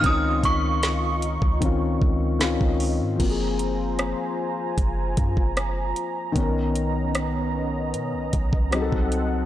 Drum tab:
CC |----------------|x---------------|----------------|
HH |x-x-x-x-x---x-o-|x-x-x---x-x-x-x-|x-x-x---x-x-x-x-|
SD |----o-------o---|----r-------r---|----r-------r---|
BD |o-o----oo-o--o--|o-------o-oo----|o---------oo-o--|